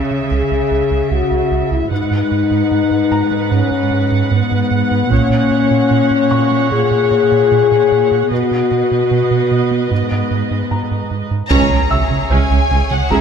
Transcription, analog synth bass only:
0.11 C#3
0.31 C#2
0.51 C#2
0.71 C#2
0.91 C#2
1.11 C#2
1.31 C#2
1.51 C#2
1.71 C#2
1.91 G#2
2.11 G#2
2.32 G#2
2.51 G#2
2.71 G#2
2.91 G#2
3.11 G#2
3.31 G#3
3.51 G#2
3.71 G#2
3.91 G#2
4.12 G#2
4.31 G#2
4.51 G#2
4.71 G#2
4.91 G#2
5.11 A#2
5.31 A#2
5.51 A#2
5.71 A#2
5.91 A#2
6.11 A#2
6.31 A#2
6.52 A#3
6.72 A#2
6.91 A#2
7.11 A#2
7.32 A#2
7.52 A#2
7.72 A#2
7.92 A#2
8.12 A#2
8.31 B2
8.51 B2
8.71 B2
8.92 B2
9.11 B2
9.31 B2
9.51 B2
9.71 B3
9.91 G#2
10.11 G#2
10.31 G#2
10.51 G#2
10.71 G#2
10.91 G#2
11.11 G#2
11.31 G#2
11.51 C#2
11.71 C#2
11.91 C#3
12.11 C#3
12.31 C#2
12.51 C#2
12.71 C#2
12.91 C#3
13.11 C#2

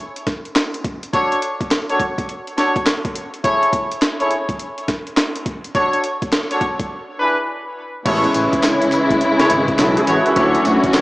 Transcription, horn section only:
1.13 D4 F#4 A4 C#5
1.89 D4 F#4 A4 C#5
2.57 D4 F#4 A4 C#5
3.44 E4 G#4 A4 C#5
4.20 E4 G#4 A4 C#5
5.75 D4 F#4 A4 C#5
6.51 D4 F#4 A4 C#5
7.19 D4 E4 G#4 B4
8.05 E4 G#4 A4 C#5
9.39 E4 G#4 A4 C#5
10.07 E4 G#4 A4 C#5
10.36 D4 F#4 A4 C#5

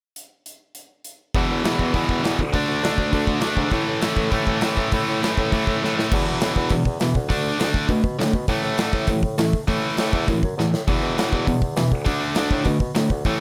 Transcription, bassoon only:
1.35 E2
1.51 E2
1.65 E2
1.80 E2
1.94 E2
2.10 E2
2.24 E2
2.40 D2
2.54 D2
2.68 D2
2.82 D2
2.98 D2
3.13 D2
3.28 D2
3.43 D2
3.57 G#2
3.72 A2
3.87 A2
4.03 A2
4.17 A2
4.32 A2
4.47 A2
4.63 A2
4.78 A2
4.93 A2
5.09 A2
5.23 A2
5.38 A2
5.53 A2
5.67 A2
5.83 A2
5.97 A2
6.12 E2
6.27 E2
6.41 A2
6.57 E2
6.71 E2
6.86 E2
7.00 E3
7.15 D2
7.30 D2
7.58 D2
7.89 B2
8.04 B2
8.19 A2
8.34 B2
8.48 A2
8.64 A2
8.79 D3
8.93 A2
9.08 A2
9.23 A2
9.38 A3
9.68 A2
9.98 A2
10.13 E2
10.28 F#2
10.44 F#2
10.57 E2
10.73 A2
10.88 E2
11.03 E2
11.18 A2
11.33 E2
11.48 E2
11.62 E2
11.76 E3
11.92 D2
12.06 D2
12.36 D2
12.51 A2
12.66 B2
12.81 B2
12.97 A2
13.11 D2
13.25 A2

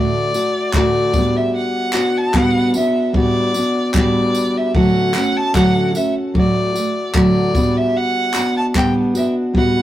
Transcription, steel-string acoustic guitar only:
Already playing: D3 A3 F#4
0.35 A3 F#4
0.75 D3 A3 F#4
1.15 G3 B3 D4 F#4
1.94 B3 D4 F#4
2.33 G3 B3 D4 F#4
2.75 B3 D4 F#4
3.13 G3 B3 D4 F#4
3.54 B3 D4 F#4
3.95 G3 B3 D4 F#4
4.74 D3 F#3 A3 C#4 F#4
5.15 A3 C#4 F#4
5.54 D3 F#3 A3 C#4 F#4
5.94 A3 C#4 F#4
6.34 F#3 A3 F#4
6.74 A3 F#4
7.13 D3 F#3 A3 F#4
7.55 G3 B3 D4 F#4
8.34 B3 D4 F#4
8.74 G3 B3 D4
9.14 B3 D4 F#4
9.53 G3 B3 D4 F#4

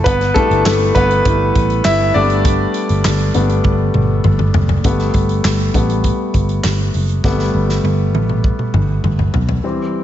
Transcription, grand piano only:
0.04 B3 B4
0.34 G3 A3 B3 E4 A4
0.65 A3 A4
0.95 B3 B4
1.26 G3 B3 E4
1.85 E4 E5
2.14 G3 A3 B3 D4 D5
3.34 G3 A3 B3
4.84 G3 A3 B3
5.74 G3 A3 B3
7.24 G3 A3 B3
9.64 E3 G3 C4

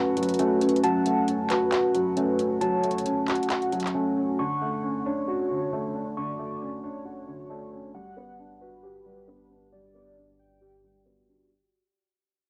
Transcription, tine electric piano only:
Already playing: C#4 F#4 A5
0.39 C#4
0.84 A5
1.73 F#4
2.17 C#4
2.61 A5
3.50 F#4
3.95 C#4
4.39 C#6
5.28 F#4
5.72 D4
6.17 C#6
7.06 F#4
7.50 D4
7.95 F#5
8.83 G4
9.28 D4
9.72 D5
10.61 G4
11.06 F#4

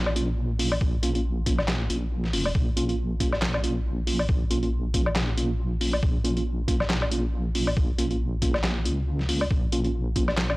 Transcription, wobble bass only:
Already playing: A#1
0.81 A#1
1.90 A#1
2.33 F1
2.55 A#1
4.29 A#1
6.03 A#1
7.77 A#1
8.85 C#2
9.51 A#1

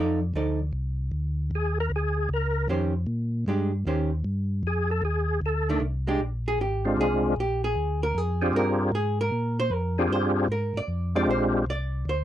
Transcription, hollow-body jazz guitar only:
Already playing: F3 D#4 A4 D5
0.35 F3 D#4 A4 D5
2.69 D#3 C#4 G4 C5
3.48 G#3 D4 G4
3.87 D#3 C#4 G4 C5
5.69 D#3 A3 D4
6.07 G#3 D4 G4
6.48 G#4
6.61 G4
7.01 G#4
7.40 G4
7.64 G#4
8.03 A#4
8.18 G#4
8.56 A#4
8.95 G#4
9.21 A#4
9.60 C5
9.73 A#4
10.13 C5
10.52 A#4
10.77 D5
11.16 D5
11.30 C5
11.70 D5
12.09 C5

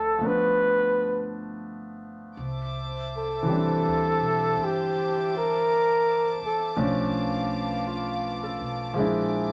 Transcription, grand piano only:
Already playing: F3 A3 C4 E5
0.19 F3 A3 B3
0.24 D4
3.43 E3
3.47 G3 C4
3.53 D4
6.76 F3 A3 C#4 D4
7.87 F4
8.43 A4
8.94 F3 G#3
8.98 D4 E4

